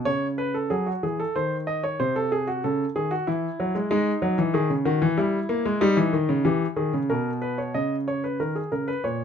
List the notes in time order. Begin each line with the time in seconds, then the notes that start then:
0.05 C#3 C#5
0.38 B4
0.54 A4
0.70 F#3 G#4
0.86 F#4
1.03 E3 G#4
1.20 A4
1.35 D#3 C5
1.67 D#5
1.84 C#5
2.00 C3 C5
2.16 A4
2.32 G#4
2.47 F#4
2.64 C#3 A4
2.96 D#3 G#4
3.11 F#4
3.27 E3 E4
3.60 F#3
3.75 G#3
3.91 G#3 D#4
4.22 F#3
4.38 E3
4.54 D#3 G#4
4.70 C#3
4.85 D#3 F#4
5.02 E3
5.18 G3 E4
5.49 A#3
5.65 G#3
5.81 G3 D#4
5.97 E3
6.13 D#3
6.29 C#3
6.45 E3 G4
6.76 D#3 G#4
6.93 C#3
7.10 B2 A#4
7.42 B4
7.58 C#5
7.74 C#3 D#5
8.08 C#5
8.24 B4
8.40 D#3 A#4
8.55 G#4
8.72 C#3 A#4
8.88 B4
9.04 A#2 C#5